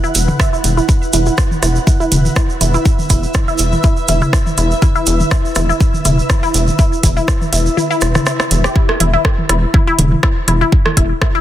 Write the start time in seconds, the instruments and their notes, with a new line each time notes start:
Already playing: ambient pad E4 B4 F#5
0.04 synth pluck E4, shaker
0.15 analog synth bass E1, closed hi-hat, shaker
0.28 mid tom, high tom, shaker
0.40 synth pluck E5, kick, cross-stick, shaker
0.53 synth pluck E4, shaker
0.64 analog synth bass E1, closed hi-hat, high tom, shaker
0.77 synth pluck E4, shaker
0.89 synth pluck E4, kick, shaker
1.02 shaker
1.13 analog synth bass E1, synth pluck E4, closed hi-hat, high tom, shaker
1.26 synth pluck E4, shaker
1.38 kick, cross-stick, shaker
1.51 high tom, shaker
1.62 analog synth bass E1, synth pluck E4, cross-stick, closed hi-hat, shaker
1.69 ambient pad E5
1.75 shaker
1.87 synth pluck E4, kick, high tom, shaker
2.00 synth pluck E4, shaker
2.12 analog synth bass E1, closed hi-hat, mid tom, shaker
2.25 high tom, shaker
2.36 synth pluck E4, kick, cross-stick, shaker
2.49 shaker
2.61 analog synth bass E1, synth pluck E4, closed hi-hat, high tom, shaker
2.74 synth pluck E4, shaker
2.85 kick, shaker
2.99 high tom, shaker
3.10 analog synth bass E1, synth pluck E4, kick, closed hi-hat, shaker
3.23 shaker
3.34 synth pluck E4, kick, cross-stick, high tom, shaker
3.48 synth pluck E4, shaker
3.58 analog synth bass E1, closed hi-hat, shaker
3.72 high tom, shaker
3.83 synth pluck E4, kick, shaker
3.97 shaker
4.08 analog synth bass E1, synth pluck E4, closed hi-hat, high tom, shaker
4.22 synth pluck E4, mid tom, shaker
4.33 kick, cross-stick, shaker
4.46 high tom, shaker
4.58 analog synth bass E1, synth pluck E4, closed hi-hat, shaker
4.71 shaker
4.82 synth pluck E4, kick, high tom, shaker
4.95 synth pluck E4, shaker
5.06 analog synth bass E1, closed hi-hat, shaker
5.20 high tom, shaker
5.31 synth pluck E4, kick, cross-stick, shaker
5.45 shaker
5.55 analog synth bass E1, synth pluck E4, cross-stick, closed hi-hat, high tom, shaker
5.69 synth pluck E4, shaker
5.80 kick, shaker
5.94 high tom, shaker
6.05 analog synth bass E1, synth pluck E4, closed hi-hat, mid tom, shaker
6.19 shaker
6.30 synth pluck E4, kick, cross-stick, high tom, shaker
6.43 synth pluck E4, shaker
6.54 analog synth bass E1, closed hi-hat, shaker
6.67 high tom, shaker
6.79 synth pluck E4, kick, shaker
6.93 shaker
7.03 analog synth bass E1, synth pluck E4, kick, closed hi-hat, high tom, shaker
7.17 synth pluck E4, shaker
7.28 kick, cross-stick, shaker
7.41 high tom, shaker
7.53 analog synth bass E1, synth pluck E4, closed hi-hat, shaker
7.66 shaker
7.77 synth pluck E4, high tom, shaker
7.91 synth pluck E4, shaker
8.01 analog synth bass E1, cross-stick, closed hi-hat, shaker
8.15 synth pluck E4, cross-stick, mid tom, high tom, shaker
8.26 synth pluck E4, cross-stick, shaker
8.40 cross-stick, shaker
8.51 analog synth bass E1, closed hi-hat, high tom, shaker
8.64 synth pluck G4, cross-stick, shaker
8.76 synth pluck E4, kick
8.89 cross-stick
9.00 analog synth bass E1, synth pluck E4, closed hi-hat, high tom
9.13 synth pluck E4
9.25 kick, cross-stick
9.38 high tom
9.49 analog synth bass E1, synth pluck E4, cross-stick, closed hi-hat
9.74 synth pluck E4, kick, high tom
9.87 synth pluck E4
9.98 analog synth bass E1, closed hi-hat, mid tom
10.12 high tom
10.23 synth pluck E4, kick, cross-stick
10.48 analog synth bass E1, synth pluck E4, closed hi-hat, high tom
10.61 synth pluck E4
10.72 kick
10.86 cross-stick, high tom
10.97 analog synth bass E1, synth pluck E4, kick, closed hi-hat
11.21 synth pluck E4, kick, cross-stick, high tom
11.35 synth pluck E4